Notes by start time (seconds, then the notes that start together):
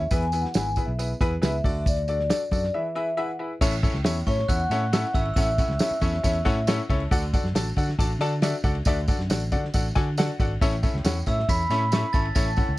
Already playing: E5
0.11 E2 E3 B3 E4 G#4 B4 G#5, kick, closed hi-hat, tambourine
0.22 closed hi-hat
0.28 G#5
0.32 B3 E4 G#4 B4, closed hi-hat, tambourine
0.41 F#5, snare
0.54 G#1 B3 E4 G#4 B4 G#5, snare, closed hi-hat, tambourine
0.76 B3 E4 G#4 B4, kick, closed hi-hat, tambourine
0.86 B1 E5
0.99 B3 E4 G#4 B4, closed hi-hat, tambourine
1.20 E2 B3 E4 G#4 B4, kick, closed hi-hat, tambourine
1.42 C#2 B3 E4 G#4 B4 E5, snare, closed hi-hat, tambourine
1.64 D2 D3 D4 F#4 A4 D5, kick, open hi-hat, tambourine
1.86 D5, kick, closed hi-hat, tambourine
1.97 closed hi-hat
2.08 D4 F#4 A4 D5, closed hi-hat, tambourine
2.19 snare
2.30 D4 F#4 A4 D5, snare, closed hi-hat, tambourine
2.51 F#2 D4 F#4 A4 D5, kick, closed hi-hat, tambourine
2.64 snare
2.74 E3 E4 G#4 B4 E5
2.95 E4 G#4 B4 E5
3.17 E4 G#4 B4 E5 F#5
3.39 E4 G#4 B4 E5
3.61 A1 A2 C#4 E4 A4 C#5 E5, kick, crash, tambourine
3.72 ride
3.83 C#4 E4 A4 C#5 E5, kick, ride, tambourine
3.93 C#2, snare
4.04 E2 C#4 E4 A4 C#5 E5, snare, ride, tambourine
4.26 A2 C#4 E4 A4 C#5 E5 C#6, kick, ride, tambourine
4.39 snare
4.48 E2 C#4 E4 A4 C#5 E5 F#5 F#6, kick, ride, tambourine
4.70 A2 C#4 E4 A4 C#5 E5, snare, ride, tambourine
4.93 C#4 E4 A4 C#5 E5, snare, ride, tambourine
5.13 G#1 C#4 E4 A4 C#5 E5 E6, kick, ride, tambourine
5.25 ride
5.34 A1 A2 C#4 E4 A4 C#5 E5 F#5 E6, kick, ride, tambourine
5.58 C#4 E4 A4 C#5 F#5, kick, ride, tambourine
5.68 C#2, snare
5.79 C#4 E4 A4 C#5 E5, snare, ride, tambourine
5.91 muted fingered electric bass stroke
6.01 E2 C#4 E4 A4 C#5 E5, kick, ride, tambourine
6.14 snare
6.23 E2 C#4 E4 A4 C#5 E5, kick, ride, tambourine
6.45 A2 C#4 E4 A4 C#5 E5 F#5, kick, snare, ride, tambourine
6.67 C#4 E4 A4 C#5 E5 F#5, snare, ride, tambourine
6.89 C#2 C#4 E4 A4 C#5 E5 A5, kick, ride, tambourine
7.00 ride
7.11 D2 D3 D4 F#4 A4 D5 F#5, kick, ride, tambourine
7.22 ride
7.33 D4 F#4 A4 D5 F#5, kick, ride, tambourine
7.44 F#2, snare
7.54 A1 D4 F#4 A4 D5 A5, snare, ride, tambourine
7.76 D3 D4 F#4 A4 D5 F#5, kick, ride, tambourine
7.89 snare
7.98 A1 D4 F#4 A4 D5 A5, kick, ride, tambourine
8.19 D3 D4 F#4 A4 D5 A5, snare, ride, tambourine
8.42 D4 F#4 A4 D5 E5, snare, ride, tambourine
8.64 C#2 D4 F#4 A4 D5 F#5, kick, ride, tambourine
8.75 ride
8.85 D2 D3 D4 F#4 A4 D5 E5, kick, ride, tambourine
9.08 D4 F#4 A4 D5 F#5, kick, ride, tambourine
9.19 F#2, snare
9.29 A1 D4 F#4 A4 D5 F#5, snare, ride, tambourine
9.52 D3 D4 F#4 A4 D5 F#5, kick, ride, tambourine
9.65 snare
9.74 A1 D4 F#4 A4 D5 F#5, kick, ride, tambourine
9.95 D3 D4 F#4 A4 D5 G#5, kick, snare, ride, tambourine
10.18 D4 F#4 A4 D5 F#5, snare, ride, tambourine
10.40 G#1 D4 F#4 A4 D5 F#5, kick, ride, tambourine
10.61 A1 A2 C#4 E4 A4 C#5 E5, kick, ride, tambourine
10.72 ride
10.83 C#4 E4 A4 C#5 E5, kick, ride, tambourine
10.94 C#2, snare
11.04 E2 C#4 E4 A4 C#5 F#5, snare, ride, tambourine
11.26 A2 C#4 E4 A4 C#5 E5 E6, kick, ride, tambourine
11.39 snare
11.48 E2 C#4 E4 A4 C#5 E5 B5 B6, kick, ride, tambourine
11.69 A2 C#4 E4 A4 C#5 E5, snare, ride, tambourine
11.92 C#4 E4 A4 C#5 E5, snare, ride, tambourine
12.13 G#1 C#4 E4 A4 C#5 E5 A5 A6, kick, ride, tambourine
12.25 ride
12.35 A1 A2 C#4 E4 A4 C#5 E5 A5 A6, kick, ride, tambourine
12.57 C#4 E4 A4 C#5 F#5, kick, ride, tambourine
12.69 C#2